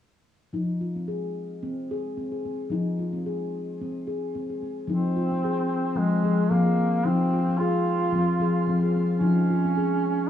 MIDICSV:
0, 0, Header, 1, 3, 480
1, 0, Start_track
1, 0, Key_signature, -4, "minor"
1, 0, Tempo, 542986
1, 477, Time_signature, 4, 2, 24, 8
1, 9104, End_track
2, 0, Start_track
2, 0, Title_t, "Duduk"
2, 0, Program_c, 0, 69
2, 4332, Note_on_c, 0, 60, 80
2, 5286, Note_on_c, 0, 56, 64
2, 5299, Note_off_c, 0, 60, 0
2, 5758, Note_on_c, 0, 58, 76
2, 5771, Note_off_c, 0, 56, 0
2, 6230, Note_on_c, 0, 60, 84
2, 6243, Note_off_c, 0, 58, 0
2, 6702, Note_on_c, 0, 65, 82
2, 6716, Note_off_c, 0, 60, 0
2, 7908, Note_off_c, 0, 65, 0
2, 8111, Note_on_c, 0, 61, 91
2, 9104, Note_off_c, 0, 61, 0
2, 9104, End_track
3, 0, Start_track
3, 0, Title_t, "Handpan"
3, 0, Program_c, 1, 114
3, 468, Note_on_c, 1, 53, 51
3, 476, Note_on_c, 1, 63, 62
3, 716, Note_on_c, 1, 65, 45
3, 718, Note_off_c, 1, 63, 0
3, 846, Note_off_c, 1, 65, 0
3, 848, Note_on_c, 1, 60, 45
3, 954, Note_on_c, 1, 68, 54
3, 959, Note_off_c, 1, 60, 0
3, 1197, Note_off_c, 1, 68, 0
3, 1438, Note_on_c, 1, 60, 65
3, 1680, Note_off_c, 1, 60, 0
3, 1688, Note_on_c, 1, 68, 61
3, 1919, Note_on_c, 1, 60, 54
3, 1925, Note_off_c, 1, 68, 0
3, 2048, Note_on_c, 1, 68, 44
3, 2049, Note_off_c, 1, 60, 0
3, 2161, Note_off_c, 1, 68, 0
3, 2167, Note_on_c, 1, 60, 51
3, 2362, Note_off_c, 1, 53, 0
3, 2385, Note_on_c, 1, 53, 58
3, 2401, Note_on_c, 1, 63, 67
3, 2405, Note_off_c, 1, 60, 0
3, 2641, Note_off_c, 1, 63, 0
3, 2643, Note_on_c, 1, 65, 51
3, 2764, Note_on_c, 1, 60, 50
3, 2771, Note_off_c, 1, 65, 0
3, 2879, Note_off_c, 1, 60, 0
3, 2882, Note_on_c, 1, 68, 54
3, 3122, Note_off_c, 1, 68, 0
3, 3370, Note_on_c, 1, 60, 60
3, 3599, Note_on_c, 1, 68, 52
3, 3606, Note_off_c, 1, 60, 0
3, 3841, Note_off_c, 1, 68, 0
3, 3846, Note_on_c, 1, 60, 55
3, 3972, Note_off_c, 1, 60, 0
3, 3976, Note_on_c, 1, 68, 43
3, 4084, Note_on_c, 1, 60, 44
3, 4085, Note_off_c, 1, 68, 0
3, 4278, Note_off_c, 1, 53, 0
3, 4308, Note_on_c, 1, 53, 74
3, 4322, Note_off_c, 1, 60, 0
3, 4328, Note_on_c, 1, 63, 69
3, 4564, Note_off_c, 1, 63, 0
3, 4566, Note_on_c, 1, 65, 58
3, 4691, Note_off_c, 1, 65, 0
3, 4698, Note_on_c, 1, 60, 50
3, 4805, Note_off_c, 1, 60, 0
3, 4811, Note_on_c, 1, 68, 58
3, 5046, Note_off_c, 1, 68, 0
3, 5163, Note_off_c, 1, 53, 0
3, 5263, Note_on_c, 1, 53, 67
3, 5287, Note_on_c, 1, 60, 60
3, 5482, Note_off_c, 1, 53, 0
3, 5510, Note_on_c, 1, 53, 59
3, 5523, Note_off_c, 1, 60, 0
3, 5523, Note_on_c, 1, 68, 62
3, 5726, Note_off_c, 1, 53, 0
3, 5753, Note_on_c, 1, 53, 79
3, 5760, Note_off_c, 1, 68, 0
3, 5760, Note_on_c, 1, 60, 57
3, 5887, Note_off_c, 1, 60, 0
3, 5890, Note_on_c, 1, 68, 52
3, 6000, Note_off_c, 1, 68, 0
3, 6001, Note_on_c, 1, 60, 54
3, 6180, Note_off_c, 1, 53, 0
3, 6229, Note_on_c, 1, 53, 83
3, 6237, Note_on_c, 1, 63, 71
3, 6239, Note_off_c, 1, 60, 0
3, 6476, Note_off_c, 1, 63, 0
3, 6483, Note_on_c, 1, 65, 53
3, 6608, Note_off_c, 1, 65, 0
3, 6617, Note_on_c, 1, 60, 56
3, 6722, Note_off_c, 1, 60, 0
3, 6723, Note_on_c, 1, 68, 61
3, 6959, Note_off_c, 1, 68, 0
3, 7081, Note_off_c, 1, 53, 0
3, 7181, Note_on_c, 1, 53, 78
3, 7203, Note_on_c, 1, 60, 69
3, 7400, Note_off_c, 1, 53, 0
3, 7424, Note_on_c, 1, 53, 68
3, 7438, Note_on_c, 1, 68, 63
3, 7439, Note_off_c, 1, 60, 0
3, 7641, Note_off_c, 1, 53, 0
3, 7663, Note_on_c, 1, 53, 72
3, 7676, Note_off_c, 1, 68, 0
3, 7681, Note_on_c, 1, 60, 70
3, 7806, Note_off_c, 1, 60, 0
3, 7809, Note_on_c, 1, 68, 57
3, 7918, Note_off_c, 1, 68, 0
3, 7920, Note_on_c, 1, 60, 54
3, 8093, Note_off_c, 1, 53, 0
3, 8140, Note_on_c, 1, 53, 85
3, 8151, Note_on_c, 1, 63, 74
3, 8157, Note_off_c, 1, 60, 0
3, 8393, Note_off_c, 1, 63, 0
3, 8400, Note_on_c, 1, 65, 57
3, 8526, Note_off_c, 1, 65, 0
3, 8528, Note_on_c, 1, 60, 58
3, 8637, Note_off_c, 1, 60, 0
3, 8640, Note_on_c, 1, 68, 62
3, 8878, Note_off_c, 1, 68, 0
3, 8997, Note_off_c, 1, 53, 0
3, 9104, End_track
0, 0, End_of_file